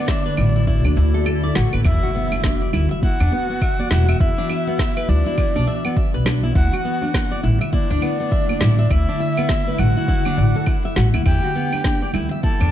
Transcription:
Already playing: ambient pad D3 A3 F#4, soft synth lead D5
0.08 nylon-string guitar E5, kick, snare, high conga, shaker
0.26 nylon-string guitar B4, shaker
0.37 upright bass A1, nylon-string guitar E4, low conga, claves, shaker
0.55 nylon-string guitar E4, shaker
0.67 nylon-string guitar E4, kick, swell, shaker
0.85 upright bass D2, nylon-string guitar D4, muted conga, high conga, claves, shaker
0.96 upright bass D2, nylon-string guitar E4, muted conga, shaker
1.14 nylon-string guitar A4, high conga, shaker
1.26 nylon-string guitar A4, claves, shaker
1.43 nylon-string guitar D5, shaker
1.55 upright bass A1, nylon-string guitar F#4, snare, muted conga, low conga, shaker
1.73 upright bass A1, nylon-string guitar B4, high conga, claves, shaker
1.85 upright bass E2, ambient pad E3 B3 F#4, nylon-string guitar E4, soft synth lead E5, kick, impact, claves, shaker
2.03 nylon-string guitar F#4, shaker
2.15 nylon-string guitar B3, shaker
2.32 nylon-string guitar D4, muted conga, claves, shaker
2.44 nylon-string guitar D4, kick, snare, high conga, shaker
2.62 nylon-string guitar D5, shaker
2.73 upright bass D2, nylon-string guitar E4, low conga, claves, shaker
2.91 nylon-string guitar E5, shaker
3.02 nylon-string guitar E4, soft synth lead F#5, kick, high conga, shaker
3.20 upright bass E2, nylon-string guitar D4, claves
3.32 nylon-string guitar B3, muted conga, shaker
3.50 nylon-string guitar B3, shaker
3.62 nylon-string guitar E5, kick, claves, shaker
3.79 nylon-string guitar D5, high conga
3.91 upright bass E1, nylon-string guitar E4, snare, low conga, shaker
4.08 nylon-string guitar E5, muted conga, claves, shaker
4.20 upright bass E2, nylon-string guitar E4, soft synth lead E5, kick, shaker
4.38 nylon-string guitar D4, shaker
4.50 nylon-string guitar E5, claves, shaker
4.67 nylon-string guitar B3, muted conga, shaker
4.79 nylon-string guitar E5, kick, snare, high conga, shaker
4.97 nylon-string guitar B4, claves, shaker
5.09 upright bass D2, nylon-string guitar E4, soft synth lead D5, low conga, shaker
5.26 nylon-string guitar E4, shaker
5.38 nylon-string guitar E4, kick, claves, shaker
5.55 upright bass B1, nylon-string guitar D4, high conga
5.67 nylon-string guitar E5, muted conga, shaker
5.85 nylon-string guitar B3, claves, shaker
5.97 nylon-string guitar E5, kick, shaker
6.14 upright bass B1, nylon-string guitar B4
6.26 nylon-string guitar D4, snare, muted conga, low conga, claves, shaker
6.43 nylon-string guitar E4, high conga, shaker
6.55 upright bass D2, ambient pad D3 A3 E4, nylon-string guitar E4, soft synth lead F#5, kick, shaker
6.73 nylon-string guitar F#4, claves, shaker
6.85 nylon-string guitar B3, shaker
7.02 nylon-string guitar D4, muted conga, shaker
7.14 nylon-string guitar D4, kick, snare, high conga, claves, shaker
7.32 nylon-string guitar D5, shaker
7.43 upright bass A1, nylon-string guitar E4, low conga, shaker
7.61 nylon-string guitar E5, claves, shaker
7.73 nylon-string guitar E4, soft synth lead D5, kick, high conga, shaker
7.90 upright bass D2, nylon-string guitar D4
8.02 nylon-string guitar B3, muted conga, claves, shaker
8.20 nylon-string guitar B3, shaker
8.32 nylon-string guitar E5, kick, shaker
8.49 nylon-string guitar D5, high conga, claves
8.61 upright bass A1, nylon-string guitar E4, snare, low conga, shaker
8.78 nylon-string guitar E5, muted conga, shaker
8.91 upright bass D2, nylon-string guitar E4, soft synth lead E5, kick, claves, shaker
9.08 nylon-string guitar D4, shaker
9.20 nylon-string guitar E5, shaker
9.37 nylon-string guitar B3, muted conga, claves, shaker
9.49 nylon-string guitar E5, kick, snare, high conga, shaker
9.67 nylon-string guitar B4, shaker
9.78 upright bass A1, nylon-string guitar E4, soft synth lead F#5, low conga, claves, shaker
9.96 nylon-string guitar E4, shaker
10.08 nylon-string guitar E4, kick, shaker
10.25 nylon-string guitar D4, high conga, claves
10.37 upright bass A1, nylon-string guitar D5, muted conga, shaker
10.55 nylon-string guitar A4, shaker
10.66 nylon-string guitar E4, kick, claves, shaker
10.85 nylon-string guitar E5, shaker
10.96 upright bass A1, nylon-string guitar F#4, snare, muted conga, low conga, shaker
11.14 upright bass D2, nylon-string guitar E4, high conga, claves, shaker
11.26 upright bass E2, ambient pad E3 F#3 B3, nylon-string guitar E4, soft synth lead G5, kick, claves, shaker
11.44 nylon-string guitar F#4, shaker
11.55 nylon-string guitar B3, shaker
11.73 nylon-string guitar D4, muted conga, claves, shaker
11.84 nylon-string guitar D4, kick, snare, high conga, shaker
12.02 nylon-string guitar D5, shaker
12.13 upright bass D2, nylon-string guitar E4, low conga, claves, shaker
12.31 nylon-string guitar E5, shaker
12.43 nylon-string guitar E4, soft synth lead A5, kick, high conga, shaker
12.60 upright bass E2, nylon-string guitar D4, claves

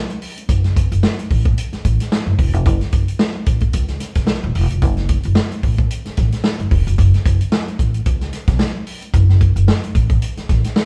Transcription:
0.10 closed hi-hat
0.22 open hi-hat
0.38 closed hi-hat
0.49 upright bass F#1, kick, closed hi-hat
0.64 snare, closed hi-hat
0.77 kick, closed hi-hat
0.92 upright bass F#1, closed hi-hat
1.03 snare
1.19 closed hi-hat
1.31 upright bass A1, kick, open hi-hat
1.45 kick, closed hi-hat
1.58 closed hi-hat
1.73 muted upright bass stroke, snare, closed hi-hat
1.85 upright bass A1, kick, closed hi-hat
2.00 snare, closed hi-hat
2.12 snare
2.27 upright bass F#1
2.39 upright bass E1, kick, open hi-hat
2.53 upright bass F1, closed hi-hat
2.66 upright bass F#1, kick, closed hi-hat
2.81 snare, closed hi-hat
2.92 upright bass F#1, kick, closed hi-hat
3.08 closed hi-hat
3.19 snare
3.46 upright bass A1, kick, closed hi-hat
3.60 kick, closed hi-hat
3.73 upright bass C#2, kick, closed hi-hat
3.88 snare, closed hi-hat
4.00 snare, closed hi-hat
4.15 upright bass B1, kick, snare, closed hi-hat
4.27 snare
4.44 upright bass D#1
4.55 upright bass E1, open hi-hat
4.70 closed hi-hat
4.82 upright bass F#1, kick, closed hi-hat
4.97 snare, closed hi-hat
5.09 kick, closed hi-hat
5.23 upright bass F#1, closed hi-hat
5.35 snare
5.51 closed hi-hat
5.63 upright bass A1, kick, open hi-hat
5.78 kick, closed hi-hat
5.91 closed hi-hat
6.05 muted upright bass stroke, snare, closed hi-hat
6.17 upright bass A1, kick, snare, closed hi-hat
6.32 snare, closed hi-hat
6.44 snare
6.59 upright bass F#1, closed hi-hat
6.71 upright bass E1, kick, open hi-hat
6.87 upright bass F1, closed hi-hat
6.98 upright bass F#1, kick, closed hi-hat
7.14 snare, closed hi-hat
7.26 upright bass F#1, kick, closed hi-hat
7.41 closed hi-hat
7.52 snare
7.68 closed hi-hat
7.79 upright bass A1, kick, closed hi-hat
7.94 closed hi-hat
8.06 upright bass C#2, kick, closed hi-hat
8.21 snare, closed hi-hat
8.33 snare, closed hi-hat
8.48 upright bass B1, kick, snare, closed hi-hat
8.59 snare
8.87 open hi-hat
9.02 closed hi-hat
9.14 upright bass F#1, kick, closed hi-hat
9.29 snare
9.41 kick, closed hi-hat
9.56 upright bass F#1, closed hi-hat
9.68 snare
9.84 closed hi-hat
9.95 upright bass A1, kick, closed hi-hat
10.10 kick, closed hi-hat
10.22 closed hi-hat
10.37 muted upright bass stroke, snare, closed hi-hat
10.49 upright bass A1, kick, snare, closed hi-hat
10.64 snare, closed hi-hat
10.76 snare

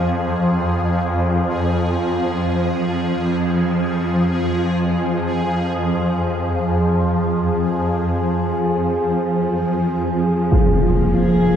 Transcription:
Already playing: synth drone F2 F3, synth texture G#4
10.52 synth drone F2 F3, cello section F3, synth texture F4, impact
10.88 cello section A#3
11.15 cello section G#4

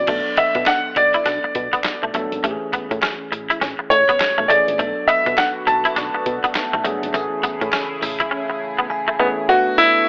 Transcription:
Already playing: tine electric piano E3 B3, grand piano D5
0.07 fm bass B1, tine electric piano F#3 B3 D4 A4, clean electric guitar A3, kick, closed hi-hat, crash
0.37 fm bass B2, clean electric guitar B3, grand piano E5, closed hi-hat
0.55 fm bass B2, muted clean electric guitar stroke, kick, closed hi-hat
0.66 clean electric guitar D4, grand piano F#5, snare, clap, closed hi-hat
0.96 fm bass B1, grand piano D5, muted clean electric guitar stroke, kick, closed hi-hat
1.14 clean electric guitar E4, closed hi-hat
1.26 fm bass B1, clean electric guitar D4, snare, closed hi-hat
1.44 muted clean electric guitar stroke
1.55 fm bass B2, kick, closed hi-hat
1.73 clean electric guitar B3, kick, closed hi-hat
1.84 muted clean electric guitar stroke, snare, clap, closed hi-hat
2.03 fm bass B1, clean electric guitar A3
2.14 fm bass G1, tine electric piano F#3 B3 D4 A4, clean electric guitar A3, closed hi-hat
2.32 fm bass G#1, closed hi-hat
2.43 fm bass A1, tine electric piano E3 A3 C#4 G4, clean electric guitar A3, closed hi-hat
2.51 tine electric piano G#4
2.73 fm bass A2, clean electric guitar B3, kick, closed hi-hat
2.91 fm bass A2, muted clean electric guitar stroke, kick, closed hi-hat
3.02 clean electric guitar C#4, snare, clap, closed hi-hat
3.32 fm bass A1, muted clean electric guitar stroke, closed hi-hat
3.50 clean electric guitar E4, closed hi-hat
3.61 fm bass A1, clean electric guitar C#4, snare, closed hi-hat
3.79 muted clean electric guitar stroke
3.90 fm bass A2, grand piano C#5, closed hi-hat
4.09 clean electric guitar B3, kick, closed hi-hat
4.20 muted clean electric guitar stroke, snare, clap, closed hi-hat
4.38 fm bass B1, clean electric guitar A3
4.48 fm bass A1, tine electric piano E3 A3 C#4 G#4, clean electric guitar A3, grand piano D5, closed hi-hat
4.68 fm bass A#1, closed hi-hat
4.78 fm bass B1, analog synth pad D3 A3 B3 F#4, tine electric piano F#3 B3 D4 A4, clean electric guitar A3, kick, closed hi-hat
5.08 fm bass B2, clean electric guitar B3, grand piano E5, closed hi-hat
5.26 fm bass B2, muted clean electric guitar stroke, kick, closed hi-hat
5.38 clean electric guitar D4, grand piano F#5, snare, clap, closed hi-hat
5.67 fm bass B1, grand piano A5, muted clean electric guitar stroke, kick, closed hi-hat
5.85 clean electric guitar E4, closed hi-hat
5.96 fm bass B1, clean electric guitar D4, snare, closed hi-hat
6.15 muted clean electric guitar stroke
6.26 fm bass B2, kick, closed hi-hat
6.44 clean electric guitar B3, kick, closed hi-hat
6.55 muted clean electric guitar stroke, snare, clap, closed hi-hat
6.73 fm bass B1, clean electric guitar A3
6.84 fm bass G1, tine electric piano F#3 B3 D4 G#4, clean electric guitar A3, closed hi-hat
7.03 fm bass G#1, closed hi-hat
7.14 fm bass A1, analog synth pad C#3 E4 G#4, tine electric piano E3 A3 C#4 G#4, clean electric guitar A3, closed hi-hat, tambourine
7.43 fm bass A2, clean electric guitar B3, kick, closed hi-hat, tambourine
7.61 fm bass A2, muted clean electric guitar stroke, kick, closed hi-hat
7.73 clean electric guitar C#4, snare, clap, closed hi-hat, tambourine
8.02 fm bass A1, muted clean electric guitar stroke, open hi-hat, tambourine
8.20 clean electric guitar E4, kick, closed hi-hat
8.31 clean electric guitar C#4
8.50 muted clean electric guitar stroke
8.79 clean electric guitar B3
8.90 tine electric piano G#5, muted clean electric guitar stroke
9.08 clean electric guitar A3
9.20 tine electric piano E3 A3 C#4 G#4 E5, clean electric guitar A3, grand piano B3
9.49 analog synth pad D3 A3 B3 F#4, tine electric piano A3 B3 D4 F#4 B4, grand piano F#4
9.78 grand piano E4

